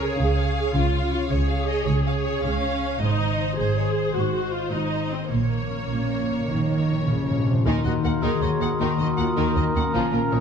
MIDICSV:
0, 0, Header, 1, 13, 480
1, 0, Start_track
1, 0, Tempo, 378072
1, 941, Time_signature, 12, 3, 24, 8
1, 5742, Tempo, 391389
1, 9582, Tempo, 380711
1, 13048, End_track
2, 0, Start_track
2, 0, Title_t, "Flute"
2, 0, Program_c, 0, 73
2, 9583, Note_on_c, 0, 84, 47
2, 12457, Note_on_c, 0, 82, 44
2, 12476, Note_off_c, 0, 84, 0
2, 13048, Note_off_c, 0, 82, 0
2, 13048, End_track
3, 0, Start_track
3, 0, Title_t, "Oboe"
3, 0, Program_c, 1, 68
3, 9595, Note_on_c, 1, 80, 49
3, 9702, Note_off_c, 1, 80, 0
3, 9832, Note_on_c, 1, 78, 45
3, 9939, Note_off_c, 1, 78, 0
3, 10069, Note_on_c, 1, 77, 51
3, 10305, Note_on_c, 1, 75, 52
3, 10324, Note_off_c, 1, 77, 0
3, 10544, Note_on_c, 1, 73, 48
3, 10563, Note_off_c, 1, 75, 0
3, 10796, Note_on_c, 1, 75, 46
3, 10815, Note_off_c, 1, 73, 0
3, 12452, Note_off_c, 1, 75, 0
3, 12459, Note_on_c, 1, 77, 51
3, 12697, Note_off_c, 1, 77, 0
3, 12708, Note_on_c, 1, 77, 46
3, 12948, Note_on_c, 1, 75, 50
3, 12967, Note_off_c, 1, 77, 0
3, 13048, Note_off_c, 1, 75, 0
3, 13048, End_track
4, 0, Start_track
4, 0, Title_t, "Violin section"
4, 0, Program_c, 2, 48
4, 0, Note_on_c, 2, 73, 45
4, 436, Note_off_c, 2, 73, 0
4, 451, Note_on_c, 2, 73, 36
4, 1161, Note_off_c, 2, 73, 0
4, 1196, Note_on_c, 2, 73, 39
4, 1890, Note_off_c, 2, 73, 0
4, 1906, Note_on_c, 2, 73, 38
4, 2601, Note_off_c, 2, 73, 0
4, 2616, Note_on_c, 2, 73, 41
4, 3305, Note_off_c, 2, 73, 0
4, 3320, Note_on_c, 2, 73, 32
4, 3802, Note_off_c, 2, 73, 0
4, 3827, Note_on_c, 2, 72, 35
4, 4054, Note_off_c, 2, 72, 0
4, 4070, Note_on_c, 2, 72, 38
4, 4770, Note_off_c, 2, 72, 0
4, 4791, Note_on_c, 2, 72, 37
4, 5477, Note_off_c, 2, 72, 0
4, 5493, Note_on_c, 2, 72, 36
4, 6200, Note_off_c, 2, 72, 0
4, 6216, Note_on_c, 2, 72, 26
4, 6687, Note_off_c, 2, 72, 0
4, 6934, Note_on_c, 2, 73, 27
4, 7649, Note_off_c, 2, 73, 0
4, 7668, Note_on_c, 2, 73, 31
4, 8374, Note_off_c, 2, 73, 0
4, 8395, Note_on_c, 2, 73, 36
4, 9087, Note_off_c, 2, 73, 0
4, 9102, Note_on_c, 2, 73, 26
4, 9573, Note_off_c, 2, 73, 0
4, 9583, Note_on_c, 2, 70, 50
4, 9809, Note_off_c, 2, 70, 0
4, 9812, Note_on_c, 2, 75, 35
4, 9912, Note_off_c, 2, 75, 0
4, 10073, Note_on_c, 2, 78, 38
4, 10168, Note_off_c, 2, 78, 0
4, 10300, Note_on_c, 2, 70, 55
4, 10526, Note_off_c, 2, 70, 0
4, 10553, Note_on_c, 2, 75, 44
4, 10649, Note_off_c, 2, 75, 0
4, 10793, Note_on_c, 2, 78, 38
4, 10889, Note_off_c, 2, 78, 0
4, 11031, Note_on_c, 2, 70, 53
4, 11254, Note_off_c, 2, 70, 0
4, 11274, Note_on_c, 2, 75, 49
4, 11370, Note_off_c, 2, 75, 0
4, 11512, Note_on_c, 2, 78, 39
4, 11608, Note_off_c, 2, 78, 0
4, 11743, Note_on_c, 2, 70, 58
4, 11969, Note_off_c, 2, 70, 0
4, 11993, Note_on_c, 2, 75, 36
4, 12088, Note_off_c, 2, 75, 0
4, 12234, Note_on_c, 2, 78, 44
4, 12328, Note_off_c, 2, 78, 0
4, 12462, Note_on_c, 2, 65, 58
4, 12686, Note_off_c, 2, 65, 0
4, 12719, Note_on_c, 2, 70, 37
4, 12812, Note_off_c, 2, 70, 0
4, 12942, Note_on_c, 2, 73, 36
4, 13038, Note_off_c, 2, 73, 0
4, 13048, End_track
5, 0, Start_track
5, 0, Title_t, "Violin section"
5, 0, Program_c, 3, 48
5, 0, Note_on_c, 3, 73, 47
5, 206, Note_off_c, 3, 73, 0
5, 215, Note_on_c, 3, 77, 59
5, 1629, Note_off_c, 3, 77, 0
5, 1656, Note_on_c, 3, 73, 56
5, 1898, Note_off_c, 3, 73, 0
5, 1900, Note_on_c, 3, 77, 50
5, 2131, Note_on_c, 3, 75, 47
5, 2139, Note_off_c, 3, 77, 0
5, 2367, Note_on_c, 3, 73, 47
5, 2369, Note_off_c, 3, 75, 0
5, 2465, Note_off_c, 3, 73, 0
5, 2620, Note_on_c, 3, 77, 45
5, 2715, Note_off_c, 3, 77, 0
5, 2850, Note_on_c, 3, 73, 46
5, 3083, Note_on_c, 3, 77, 53
5, 3088, Note_off_c, 3, 73, 0
5, 3799, Note_off_c, 3, 77, 0
5, 3817, Note_on_c, 3, 75, 55
5, 4539, Note_off_c, 3, 75, 0
5, 4545, Note_on_c, 3, 72, 52
5, 4777, Note_off_c, 3, 72, 0
5, 4788, Note_on_c, 3, 73, 43
5, 5023, Note_off_c, 3, 73, 0
5, 5032, Note_on_c, 3, 72, 43
5, 5968, Note_off_c, 3, 72, 0
5, 5985, Note_on_c, 3, 75, 39
5, 6700, Note_off_c, 3, 75, 0
5, 6708, Note_on_c, 3, 73, 44
5, 9181, Note_off_c, 3, 73, 0
5, 9598, Note_on_c, 3, 63, 61
5, 9817, Note_off_c, 3, 63, 0
5, 9833, Note_on_c, 3, 66, 37
5, 9928, Note_off_c, 3, 66, 0
5, 10063, Note_on_c, 3, 70, 37
5, 10160, Note_off_c, 3, 70, 0
5, 10298, Note_on_c, 3, 63, 63
5, 10525, Note_off_c, 3, 63, 0
5, 10546, Note_on_c, 3, 66, 38
5, 10643, Note_off_c, 3, 66, 0
5, 10776, Note_on_c, 3, 70, 44
5, 10876, Note_off_c, 3, 70, 0
5, 11034, Note_on_c, 3, 63, 54
5, 11256, Note_off_c, 3, 63, 0
5, 11271, Note_on_c, 3, 66, 35
5, 11367, Note_off_c, 3, 66, 0
5, 11513, Note_on_c, 3, 70, 43
5, 11608, Note_off_c, 3, 70, 0
5, 11738, Note_on_c, 3, 63, 59
5, 11967, Note_off_c, 3, 63, 0
5, 11992, Note_on_c, 3, 66, 39
5, 12087, Note_off_c, 3, 66, 0
5, 12225, Note_on_c, 3, 70, 45
5, 12321, Note_off_c, 3, 70, 0
5, 12466, Note_on_c, 3, 61, 63
5, 12688, Note_off_c, 3, 61, 0
5, 12699, Note_on_c, 3, 65, 35
5, 12796, Note_off_c, 3, 65, 0
5, 12939, Note_on_c, 3, 70, 38
5, 13036, Note_off_c, 3, 70, 0
5, 13048, End_track
6, 0, Start_track
6, 0, Title_t, "Trumpet"
6, 0, Program_c, 4, 56
6, 9574, Note_on_c, 4, 70, 57
6, 13048, Note_off_c, 4, 70, 0
6, 13048, End_track
7, 0, Start_track
7, 0, Title_t, "French horn section"
7, 0, Program_c, 5, 60
7, 9574, Note_on_c, 5, 58, 52
7, 9584, Note_on_c, 5, 66, 58
7, 12416, Note_off_c, 5, 66, 0
7, 12478, Note_on_c, 5, 65, 61
7, 13048, Note_off_c, 5, 58, 0
7, 13048, Note_off_c, 5, 65, 0
7, 13048, End_track
8, 0, Start_track
8, 0, Title_t, "Harp"
8, 0, Program_c, 6, 46
8, 0, Note_on_c, 6, 49, 41
8, 0, Note_on_c, 6, 56, 35
8, 0, Note_on_c, 6, 65, 36
8, 0, Note_on_c, 6, 68, 39
8, 0, Note_on_c, 6, 73, 39
8, 214, Note_off_c, 6, 68, 0
8, 229, Note_on_c, 6, 68, 39
8, 443, Note_off_c, 6, 73, 0
8, 458, Note_on_c, 6, 73, 39
8, 678, Note_off_c, 6, 68, 0
8, 693, Note_on_c, 6, 68, 38
8, 926, Note_off_c, 6, 49, 0
8, 941, Note_on_c, 6, 49, 48
8, 1164, Note_off_c, 6, 56, 0
8, 1180, Note_on_c, 6, 56, 34
8, 1406, Note_off_c, 6, 65, 0
8, 1421, Note_on_c, 6, 65, 36
8, 1645, Note_off_c, 6, 68, 0
8, 1660, Note_on_c, 6, 68, 38
8, 1889, Note_off_c, 6, 73, 0
8, 1904, Note_on_c, 6, 73, 39
8, 2130, Note_off_c, 6, 68, 0
8, 2145, Note_on_c, 6, 68, 39
8, 2362, Note_off_c, 6, 49, 0
8, 2377, Note_on_c, 6, 49, 38
8, 2603, Note_off_c, 6, 56, 0
8, 2618, Note_on_c, 6, 56, 31
8, 2838, Note_off_c, 6, 65, 0
8, 2853, Note_on_c, 6, 65, 33
8, 3078, Note_off_c, 6, 68, 0
8, 3093, Note_on_c, 6, 68, 35
8, 3328, Note_off_c, 6, 73, 0
8, 3343, Note_on_c, 6, 73, 38
8, 3560, Note_off_c, 6, 68, 0
8, 3575, Note_on_c, 6, 68, 35
8, 3816, Note_on_c, 6, 44, 43
8, 3838, Note_off_c, 6, 65, 0
8, 3839, Note_off_c, 6, 49, 0
8, 3842, Note_off_c, 6, 73, 0
8, 4050, Note_on_c, 6, 51, 32
8, 4293, Note_on_c, 6, 63, 34
8, 4520, Note_off_c, 6, 68, 0
8, 4535, Note_on_c, 6, 68, 36
8, 4777, Note_on_c, 6, 72, 34
8, 5007, Note_off_c, 6, 68, 0
8, 5247, Note_off_c, 6, 44, 0
8, 5262, Note_on_c, 6, 44, 36
8, 5488, Note_off_c, 6, 51, 0
8, 5503, Note_on_c, 6, 51, 30
8, 5721, Note_off_c, 6, 63, 0
8, 5737, Note_on_c, 6, 63, 31
8, 5975, Note_on_c, 6, 68, 30
8, 6196, Note_off_c, 6, 72, 0
8, 6211, Note_on_c, 6, 72, 30
8, 6433, Note_off_c, 6, 68, 0
8, 6448, Note_on_c, 6, 68, 31
8, 6695, Note_on_c, 6, 46, 35
8, 6712, Note_off_c, 6, 68, 0
8, 6713, Note_off_c, 6, 72, 0
8, 6714, Note_off_c, 6, 63, 0
8, 6717, Note_off_c, 6, 56, 0
8, 6718, Note_off_c, 6, 51, 0
8, 6719, Note_off_c, 6, 44, 0
8, 6940, Note_on_c, 6, 53, 25
8, 7177, Note_on_c, 6, 61, 28
8, 7424, Note_on_c, 6, 65, 30
8, 7661, Note_on_c, 6, 70, 29
8, 7888, Note_off_c, 6, 65, 0
8, 7902, Note_on_c, 6, 65, 30
8, 8135, Note_off_c, 6, 46, 0
8, 8150, Note_on_c, 6, 46, 34
8, 8369, Note_off_c, 6, 53, 0
8, 8384, Note_on_c, 6, 53, 27
8, 8610, Note_off_c, 6, 61, 0
8, 8625, Note_on_c, 6, 61, 29
8, 8855, Note_off_c, 6, 65, 0
8, 8869, Note_on_c, 6, 65, 32
8, 9086, Note_off_c, 6, 70, 0
8, 9100, Note_on_c, 6, 70, 30
8, 9337, Note_off_c, 6, 65, 0
8, 9352, Note_on_c, 6, 65, 27
8, 9582, Note_on_c, 6, 51, 53
8, 9602, Note_off_c, 6, 53, 0
8, 9603, Note_off_c, 6, 61, 0
8, 9605, Note_off_c, 6, 46, 0
8, 9607, Note_off_c, 6, 65, 0
8, 9827, Note_on_c, 6, 63, 37
8, 10065, Note_on_c, 6, 58, 42
8, 10300, Note_on_c, 6, 66, 41
8, 10534, Note_off_c, 6, 70, 0
8, 10549, Note_on_c, 6, 70, 39
8, 10771, Note_off_c, 6, 66, 0
8, 10786, Note_on_c, 6, 66, 42
8, 11006, Note_off_c, 6, 51, 0
8, 11021, Note_on_c, 6, 51, 46
8, 11247, Note_off_c, 6, 63, 0
8, 11262, Note_on_c, 6, 63, 39
8, 11490, Note_off_c, 6, 58, 0
8, 11505, Note_on_c, 6, 58, 38
8, 11730, Note_off_c, 6, 66, 0
8, 11745, Note_on_c, 6, 66, 37
8, 11975, Note_off_c, 6, 70, 0
8, 11990, Note_on_c, 6, 70, 40
8, 12218, Note_off_c, 6, 66, 0
8, 12233, Note_on_c, 6, 66, 35
8, 12471, Note_on_c, 6, 46, 52
8, 12481, Note_off_c, 6, 51, 0
8, 12481, Note_off_c, 6, 63, 0
8, 12488, Note_off_c, 6, 66, 0
8, 12704, Note_on_c, 6, 53, 37
8, 12924, Note_off_c, 6, 58, 0
8, 12939, Note_on_c, 6, 58, 41
8, 13048, Note_off_c, 6, 46, 0
8, 13048, Note_off_c, 6, 53, 0
8, 13048, Note_off_c, 6, 58, 0
8, 13048, Note_off_c, 6, 70, 0
8, 13048, End_track
9, 0, Start_track
9, 0, Title_t, "Clarinet"
9, 0, Program_c, 7, 71
9, 8866, Note_on_c, 7, 61, 51
9, 9582, Note_on_c, 7, 63, 67
9, 9601, Note_off_c, 7, 61, 0
9, 10295, Note_off_c, 7, 63, 0
9, 10303, Note_on_c, 7, 68, 82
9, 11027, Note_on_c, 7, 66, 63
9, 11046, Note_off_c, 7, 68, 0
9, 11505, Note_on_c, 7, 65, 68
9, 11524, Note_off_c, 7, 66, 0
9, 11740, Note_off_c, 7, 65, 0
9, 11748, Note_on_c, 7, 63, 61
9, 12235, Note_on_c, 7, 61, 66
9, 12254, Note_off_c, 7, 63, 0
9, 12459, Note_off_c, 7, 61, 0
9, 12467, Note_on_c, 7, 61, 71
9, 13048, Note_off_c, 7, 61, 0
9, 13048, End_track
10, 0, Start_track
10, 0, Title_t, "Viola section"
10, 0, Program_c, 8, 48
10, 0, Note_on_c, 8, 68, 63
10, 942, Note_off_c, 8, 68, 0
10, 943, Note_on_c, 8, 65, 62
10, 1396, Note_off_c, 8, 65, 0
10, 1411, Note_on_c, 8, 65, 60
10, 1509, Note_off_c, 8, 65, 0
10, 1651, Note_on_c, 8, 68, 61
10, 3062, Note_off_c, 8, 68, 0
10, 3082, Note_on_c, 8, 61, 60
10, 3812, Note_on_c, 8, 63, 61
10, 3813, Note_off_c, 8, 61, 0
10, 4522, Note_off_c, 8, 63, 0
10, 4537, Note_on_c, 8, 68, 57
10, 5242, Note_off_c, 8, 68, 0
10, 5252, Note_on_c, 8, 66, 51
10, 5735, Note_on_c, 8, 65, 49
10, 5740, Note_off_c, 8, 66, 0
10, 5976, Note_off_c, 8, 65, 0
10, 5979, Note_on_c, 8, 63, 53
10, 6455, Note_on_c, 8, 60, 48
10, 6457, Note_off_c, 8, 63, 0
10, 6694, Note_on_c, 8, 58, 47
10, 6696, Note_off_c, 8, 60, 0
10, 9295, Note_off_c, 8, 58, 0
10, 9591, Note_on_c, 8, 51, 57
10, 9807, Note_off_c, 8, 51, 0
10, 9822, Note_on_c, 8, 51, 34
10, 9920, Note_off_c, 8, 51, 0
10, 10061, Note_on_c, 8, 51, 41
10, 10159, Note_off_c, 8, 51, 0
10, 10300, Note_on_c, 8, 51, 55
10, 10514, Note_off_c, 8, 51, 0
10, 10529, Note_on_c, 8, 51, 41
10, 10629, Note_off_c, 8, 51, 0
10, 10785, Note_on_c, 8, 51, 39
10, 10883, Note_off_c, 8, 51, 0
10, 11042, Note_on_c, 8, 51, 52
10, 11249, Note_off_c, 8, 51, 0
10, 11265, Note_on_c, 8, 51, 50
10, 11362, Note_off_c, 8, 51, 0
10, 11501, Note_on_c, 8, 51, 45
10, 11599, Note_off_c, 8, 51, 0
10, 11735, Note_on_c, 8, 51, 58
10, 11965, Note_off_c, 8, 51, 0
10, 11981, Note_on_c, 8, 51, 50
10, 12079, Note_off_c, 8, 51, 0
10, 12229, Note_on_c, 8, 51, 45
10, 12324, Note_off_c, 8, 51, 0
10, 12450, Note_on_c, 8, 53, 53
10, 12679, Note_off_c, 8, 53, 0
10, 12699, Note_on_c, 8, 53, 37
10, 12796, Note_off_c, 8, 53, 0
10, 12938, Note_on_c, 8, 53, 39
10, 13035, Note_off_c, 8, 53, 0
10, 13048, End_track
11, 0, Start_track
11, 0, Title_t, "Timpani"
11, 0, Program_c, 10, 47
11, 6693, Note_on_c, 10, 46, 24
11, 6768, Note_off_c, 10, 46, 0
11, 6782, Note_on_c, 10, 46, 23
11, 6864, Note_off_c, 10, 46, 0
11, 7079, Note_on_c, 10, 46, 23
11, 7163, Note_off_c, 10, 46, 0
11, 7178, Note_on_c, 10, 46, 26
11, 7256, Note_off_c, 10, 46, 0
11, 7271, Note_on_c, 10, 46, 27
11, 7349, Note_off_c, 10, 46, 0
11, 7364, Note_on_c, 10, 46, 24
11, 7445, Note_off_c, 10, 46, 0
11, 7460, Note_on_c, 10, 46, 27
11, 7543, Note_off_c, 10, 46, 0
11, 7558, Note_on_c, 10, 46, 26
11, 7642, Note_off_c, 10, 46, 0
11, 7750, Note_on_c, 10, 46, 31
11, 7827, Note_off_c, 10, 46, 0
11, 7841, Note_on_c, 10, 46, 32
11, 7929, Note_off_c, 10, 46, 0
11, 7942, Note_on_c, 10, 46, 30
11, 8020, Note_off_c, 10, 46, 0
11, 8035, Note_on_c, 10, 46, 32
11, 8120, Note_off_c, 10, 46, 0
11, 8135, Note_on_c, 10, 46, 35
11, 8210, Note_off_c, 10, 46, 0
11, 8225, Note_on_c, 10, 46, 37
11, 8300, Note_off_c, 10, 46, 0
11, 8410, Note_on_c, 10, 46, 41
11, 8497, Note_off_c, 10, 46, 0
11, 8512, Note_on_c, 10, 46, 38
11, 8588, Note_off_c, 10, 46, 0
11, 8603, Note_on_c, 10, 46, 43
11, 8674, Note_off_c, 10, 46, 0
11, 8689, Note_on_c, 10, 46, 40
11, 8766, Note_off_c, 10, 46, 0
11, 8781, Note_on_c, 10, 46, 45
11, 8854, Note_off_c, 10, 46, 0
11, 8869, Note_on_c, 10, 46, 51
11, 8956, Note_off_c, 10, 46, 0
11, 8971, Note_on_c, 10, 46, 52
11, 9049, Note_off_c, 10, 46, 0
11, 9064, Note_on_c, 10, 46, 50
11, 9147, Note_off_c, 10, 46, 0
11, 9162, Note_on_c, 10, 46, 55
11, 9242, Note_off_c, 10, 46, 0
11, 9257, Note_on_c, 10, 46, 53
11, 9327, Note_off_c, 10, 46, 0
11, 9342, Note_on_c, 10, 46, 57
11, 9421, Note_off_c, 10, 46, 0
11, 9436, Note_on_c, 10, 46, 65
11, 9528, Note_off_c, 10, 46, 0
11, 13048, End_track
12, 0, Start_track
12, 0, Title_t, "Cello section"
12, 0, Program_c, 11, 48
12, 227, Note_on_c, 11, 49, 53
12, 826, Note_off_c, 11, 49, 0
12, 936, Note_on_c, 11, 49, 60
12, 1541, Note_off_c, 11, 49, 0
12, 1656, Note_on_c, 11, 49, 46
12, 2258, Note_off_c, 11, 49, 0
12, 2377, Note_on_c, 11, 49, 55
12, 2978, Note_off_c, 11, 49, 0
12, 3094, Note_on_c, 11, 49, 49
12, 3701, Note_off_c, 11, 49, 0
12, 3816, Note_on_c, 11, 44, 54
12, 4421, Note_off_c, 11, 44, 0
12, 4549, Note_on_c, 11, 44, 41
12, 5145, Note_off_c, 11, 44, 0
12, 5272, Note_on_c, 11, 44, 49
12, 5872, Note_off_c, 11, 44, 0
12, 5976, Note_on_c, 11, 44, 42
12, 6578, Note_off_c, 11, 44, 0
12, 6697, Note_on_c, 11, 46, 40
12, 7307, Note_off_c, 11, 46, 0
12, 7423, Note_on_c, 11, 46, 39
12, 8097, Note_off_c, 11, 46, 0
12, 8140, Note_on_c, 11, 51, 47
12, 8862, Note_off_c, 11, 51, 0
12, 8865, Note_on_c, 11, 49, 38
12, 9336, Note_on_c, 11, 48, 36
12, 9345, Note_off_c, 11, 49, 0
12, 9579, Note_off_c, 11, 48, 0
12, 9579, Note_on_c, 11, 39, 57
12, 9677, Note_off_c, 11, 39, 0
12, 9818, Note_on_c, 11, 39, 44
12, 9917, Note_off_c, 11, 39, 0
12, 10059, Note_on_c, 11, 39, 40
12, 10156, Note_off_c, 11, 39, 0
12, 10299, Note_on_c, 11, 39, 53
12, 10397, Note_off_c, 11, 39, 0
12, 10540, Note_on_c, 11, 39, 38
12, 10638, Note_off_c, 11, 39, 0
12, 10768, Note_on_c, 11, 39, 38
12, 10869, Note_off_c, 11, 39, 0
12, 11012, Note_on_c, 11, 39, 60
12, 11112, Note_off_c, 11, 39, 0
12, 11253, Note_on_c, 11, 39, 40
12, 11352, Note_off_c, 11, 39, 0
12, 11500, Note_on_c, 11, 39, 41
12, 11598, Note_off_c, 11, 39, 0
12, 11745, Note_on_c, 11, 39, 58
12, 11842, Note_off_c, 11, 39, 0
12, 11981, Note_on_c, 11, 39, 46
12, 12078, Note_off_c, 11, 39, 0
12, 12217, Note_on_c, 11, 39, 41
12, 12315, Note_off_c, 11, 39, 0
12, 12455, Note_on_c, 11, 46, 53
12, 12553, Note_off_c, 11, 46, 0
12, 12685, Note_on_c, 11, 46, 45
12, 12785, Note_off_c, 11, 46, 0
12, 12932, Note_on_c, 11, 46, 43
12, 13031, Note_off_c, 11, 46, 0
12, 13048, End_track
13, 0, Start_track
13, 0, Title_t, "Double bass section"
13, 0, Program_c, 12, 48
13, 228, Note_on_c, 12, 37, 55
13, 826, Note_off_c, 12, 37, 0
13, 941, Note_on_c, 12, 37, 60
13, 1544, Note_off_c, 12, 37, 0
13, 1656, Note_on_c, 12, 37, 49
13, 2258, Note_off_c, 12, 37, 0
13, 2371, Note_on_c, 12, 37, 57
13, 2975, Note_off_c, 12, 37, 0
13, 3090, Note_on_c, 12, 37, 47
13, 3699, Note_off_c, 12, 37, 0
13, 3813, Note_on_c, 12, 32, 57
13, 4420, Note_off_c, 12, 32, 0
13, 4537, Note_on_c, 12, 32, 48
13, 5139, Note_off_c, 12, 32, 0
13, 5266, Note_on_c, 12, 32, 47
13, 5868, Note_off_c, 12, 32, 0
13, 5983, Note_on_c, 12, 32, 41
13, 6581, Note_off_c, 12, 32, 0
13, 6696, Note_on_c, 12, 34, 45
13, 7306, Note_off_c, 12, 34, 0
13, 7435, Note_on_c, 12, 34, 39
13, 8035, Note_off_c, 12, 34, 0
13, 8156, Note_on_c, 12, 34, 42
13, 8754, Note_off_c, 12, 34, 0
13, 8870, Note_on_c, 12, 34, 38
13, 9470, Note_off_c, 12, 34, 0
13, 9594, Note_on_c, 12, 39, 65
13, 9689, Note_off_c, 12, 39, 0
13, 9840, Note_on_c, 12, 39, 40
13, 9934, Note_off_c, 12, 39, 0
13, 10081, Note_on_c, 12, 39, 42
13, 10174, Note_off_c, 12, 39, 0
13, 10319, Note_on_c, 12, 39, 58
13, 10413, Note_off_c, 12, 39, 0
13, 10558, Note_on_c, 12, 39, 38
13, 10652, Note_off_c, 12, 39, 0
13, 10805, Note_on_c, 12, 39, 41
13, 10898, Note_off_c, 12, 39, 0
13, 11035, Note_on_c, 12, 39, 57
13, 11130, Note_off_c, 12, 39, 0
13, 11283, Note_on_c, 12, 39, 43
13, 11376, Note_off_c, 12, 39, 0
13, 11512, Note_on_c, 12, 39, 39
13, 11607, Note_off_c, 12, 39, 0
13, 11755, Note_on_c, 12, 39, 58
13, 11850, Note_off_c, 12, 39, 0
13, 11993, Note_on_c, 12, 39, 43
13, 12088, Note_off_c, 12, 39, 0
13, 12234, Note_on_c, 12, 39, 44
13, 12328, Note_off_c, 12, 39, 0
13, 12474, Note_on_c, 12, 34, 61
13, 12568, Note_off_c, 12, 34, 0
13, 12710, Note_on_c, 12, 34, 38
13, 12804, Note_off_c, 12, 34, 0
13, 12950, Note_on_c, 12, 34, 40
13, 13044, Note_off_c, 12, 34, 0
13, 13048, End_track
0, 0, End_of_file